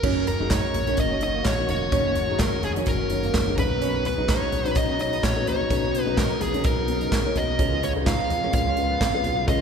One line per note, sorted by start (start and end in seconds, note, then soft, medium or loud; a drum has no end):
0.00 0.38 F#1 loud
0.00 3.54 D#3 medium
0.00 3.54 A#3 medium
0.00 0.38 C#4 medium
0.00 0.26 C#4 medium
0.00 0.38 D#4 medium
0.00 3.54 F#4 medium
0.00 0.38 F#4 medium
0.00 0.27 A#4 medium
0.00 0.38 A#4 medium
0.00 kick loud
0.00 crash medium
0.27 0.52 A#4 medium
0.27 closed hi-hat medium
0.27 floor tom medium
0.40 0.62 F#1 loud
0.40 0.84 C#4 medium
0.40 0.49 D#4 medium
0.40 0.84 D#4 medium
0.40 0.85 F#4 medium
0.40 0.85 G#4 medium
0.50 0.63 D#4 medium
0.50 1.00 C#5 medium
0.50 kick loud
0.50 snare loud
0.50 clap medium
0.50 closed hi-hat medium
0.74 0.96 A#1 medium
0.74 closed hi-hat medium
0.74 floor tom medium
0.87 1.19 C#4 medium
0.87 0.97 C#4 medium
0.87 1.19 D#4 medium
0.87 1.20 F#4 medium
0.87 1.20 A#4 medium
0.87 closed hi-hat soft
0.97 1.42 F#1 loud
0.97 1.21 D#5 medium
0.97 kick loud
0.97 closed hi-hat medium
1.11 1.21 C#4 medium
1.20 1.55 C#4 medium
1.20 1.56 D#4 medium
1.20 1.56 F#4 medium
1.20 1.56 C#5 medium
1.20 1.47 D#5 medium
1.20 closed hi-hat medium
1.35 1.57 A#3 medium
1.45 1.67 A#1 loud
1.45 1.68 C#5 medium
1.45 kick medium
1.45 snare loud
1.45 clap medium
1.45 closed hi-hat medium
1.58 1.90 C#4 medium
1.58 1.90 D#4 medium
1.58 1.91 F#4 medium
1.58 1.91 A#4 medium
1.68 1.91 F1 medium
1.68 2.42 C#5 medium
1.68 closed hi-hat medium
1.68 floor tom medium
1.92 2.27 F#1 loud
1.92 2.26 C#4 medium
1.92 2.15 C#4 medium
1.92 2.27 D#4 medium
1.92 2.27 F#4 medium
1.92 2.27 C#5 medium
1.92 kick loud
1.92 closed hi-hat medium
2.15 closed hi-hat medium
2.15 floor tom medium
2.29 2.51 F#1 medium
2.29 2.73 C#4 medium
2.29 2.73 D#4 medium
2.29 2.39 D#4 medium
2.29 2.74 F#4 medium
2.29 2.74 G#4 medium
2.39 2.53 D#4 medium
2.39 2.64 A#4 medium
2.39 kick loud
2.39 snare loud
2.39 clap medium
2.39 closed hi-hat medium
2.62 2.85 F1 medium
2.62 2.71 G#4 medium
2.62 closed hi-hat medium
2.62 floor tom medium
2.76 3.08 C#4 medium
2.76 2.87 C#4 medium
2.76 3.09 D#4 medium
2.76 3.09 F#4 medium
2.76 3.09 C#5 medium
2.76 closed hi-hat medium
2.86 3.31 F#1 loud
2.86 3.54 A#4 medium
2.86 kick loud
2.86 closed hi-hat medium
3.01 3.10 C#4 medium
3.10 3.45 C#4 medium
3.10 3.45 D#4 medium
3.10 3.45 F#4 medium
3.10 3.45 C#5 medium
3.10 closed hi-hat medium
3.23 3.46 A#3 medium
3.23 closed hi-hat soft
3.34 3.56 F#1 loud
3.34 kick medium
3.34 snare loud
3.34 clap medium
3.34 closed hi-hat medium
3.47 3.56 C#4 medium
3.47 3.57 D#4 medium
3.47 3.57 F#4 medium
3.47 3.58 G#4 medium
3.58 4.14 B1 loud
3.58 4.25 B2 medium
3.58 9.61 C#3 medium
3.58 5.44 B3 medium
3.58 4.14 C#4 medium
3.58 7.55 D#4 medium
3.58 4.14 D#4 medium
3.58 4.15 F#4 medium
3.58 4.15 B4 medium
3.58 4.06 B4 medium
3.58 kick loud
3.58 closed hi-hat medium
3.58 floor tom medium
3.81 4.04 C#4 medium
3.81 closed hi-hat medium
4.05 4.30 B4 medium
4.05 closed hi-hat medium
4.05 floor tom medium
4.18 4.40 B1 loud
4.18 4.62 C#4 medium
4.18 4.28 D#4 medium
4.18 4.62 D#4 medium
4.18 4.62 F#4 medium
4.18 4.63 G#4 medium
4.29 4.41 D#4 medium
4.29 4.77 C#5 medium
4.29 kick loud
4.29 snare loud
4.29 clap medium
4.29 closed hi-hat medium
4.52 4.74 B1 medium
4.52 closed hi-hat medium
4.52 floor tom medium
4.65 4.97 C#4 medium
4.65 4.75 C#4 medium
4.65 4.97 D#4 medium
4.65 4.97 F#4 medium
4.65 4.97 C#5 medium
4.65 closed hi-hat medium
4.75 5.20 B1 loud
4.75 5.00 D#5 loud
4.75 kick loud
4.75 closed hi-hat medium
4.89 4.99 C#4 medium
4.98 5.33 C#4 medium
4.98 5.34 D#4 medium
4.98 5.34 F#4 medium
4.98 5.34 C#5 medium
4.98 5.24 D#5 medium
4.98 closed hi-hat medium
5.13 5.35 B3 medium
5.13 closed hi-hat soft
5.23 5.45 A#1 medium
5.23 5.48 C#5 medium
5.23 kick medium
5.23 snare loud
5.23 clap medium
5.23 closed hi-hat medium
5.36 5.68 C#4 medium
5.36 5.68 D#4 medium
5.36 5.68 F#4 medium
5.36 5.69 B4 medium
5.46 5.68 A#1 medium
5.46 6.13 B2 medium
5.46 7.57 B3 medium
5.46 6.02 C#5 medium
5.46 closed hi-hat medium
5.46 floor tom medium
5.70 6.05 B1 loud
5.70 6.05 C#4 medium
5.70 5.93 C#4 loud
5.70 6.05 D#4 medium
5.70 6.05 F#4 medium
5.70 6.05 B4 medium
5.70 kick loud
5.70 closed hi-hat medium
5.95 closed hi-hat medium
6.02 6.21 B4 medium
6.06 6.29 B1 medium
6.06 6.51 C#4 medium
6.06 6.51 D#4 medium
6.06 6.16 D#4 medium
6.06 6.51 F#4 medium
6.06 6.51 B4 medium
6.17 6.30 D#4 medium
6.17 6.41 A#4 medium
6.17 kick loud
6.17 snare loud
6.17 clap medium
6.17 closed hi-hat medium
6.41 6.63 A#1 medium
6.41 6.65 G#4 medium
6.41 closed hi-hat medium
6.41 floor tom medium
6.54 6.86 C#4 medium
6.54 6.64 C#4 medium
6.54 6.86 D#4 medium
6.54 6.87 F#4 medium
6.54 6.87 A#4 medium
6.54 closed hi-hat medium
6.64 7.09 B1 loud
6.64 7.38 A#4 medium
6.64 kick loud
6.64 closed hi-hat medium
6.79 6.88 D#4 medium
6.88 7.23 B3 medium
6.88 7.22 C#4 medium
6.88 7.23 D#4 medium
6.88 7.23 F#4 medium
6.88 closed hi-hat medium
7.01 7.24 D#4 medium
7.01 closed hi-hat soft
7.12 7.34 C#2 medium
7.12 kick medium
7.12 snare loud
7.12 clap medium
7.12 closed hi-hat medium
7.25 7.57 C#4 medium
7.25 7.57 D#4 medium
7.25 7.58 F#4 medium
7.25 7.58 C#5 medium
7.35 7.58 B1 medium
7.35 7.84 D#5 medium
7.35 closed hi-hat medium
7.35 floor tom medium
7.58 7.93 C#2 loud
7.58 8.26 C#3 medium
7.58 9.61 B3 medium
7.58 7.93 C#4 medium
7.58 7.81 C#4 medium
7.58 7.93 F4 medium
7.58 9.61 F4 medium
7.58 7.94 G#4 medium
7.58 7.94 B4 medium
7.58 kick loud
7.58 closed hi-hat medium
7.83 7.90 C#5 medium
7.83 closed hi-hat medium
7.83 floor tom medium
7.96 8.18 C#2 loud
7.96 8.40 C#4 medium
7.96 8.05 D#4 medium
7.96 8.40 F4 medium
7.96 8.40 G#4 medium
7.96 8.40 B4 medium
8.06 8.19 D#4 medium
8.06 8.53 F5 medium
8.06 kick loud
8.06 snare loud
8.06 clap medium
8.06 closed hi-hat medium
8.30 8.52 F2 medium
8.30 closed hi-hat medium
8.30 floor tom medium
8.43 8.75 C#4 medium
8.43 8.53 C#4 medium
8.43 8.75 F4 medium
8.43 8.76 G#4 medium
8.43 8.76 A#4 medium
8.53 8.97 C#2 loud
8.53 9.45 F5 medium
8.53 kick loud
8.53 closed hi-hat medium
8.67 8.77 C#4 medium
8.77 9.12 C#4 medium
8.77 9.12 F4 medium
8.77 9.12 G#4 medium
8.77 9.12 B4 medium
8.77 closed hi-hat medium
8.90 9.13 B3 medium
9.01 9.23 F2 medium
9.01 kick loud
9.01 snare loud
9.01 clap medium
9.01 closed hi-hat medium
9.14 9.46 C#4 medium
9.14 9.46 F4 medium
9.14 9.46 G#4 medium
9.14 9.46 B4 medium
9.24 9.46 B1 medium
9.24 closed hi-hat medium
9.24 floor tom medium
9.47 9.61 C#2 loud
9.47 9.61 C#3 medium
9.47 9.61 C#4 medium
9.47 9.61 F4 medium
9.47 9.61 G#4 medium
9.47 9.61 B4 medium
9.47 9.61 D#5 loud
9.47 kick loud
9.47 closed hi-hat medium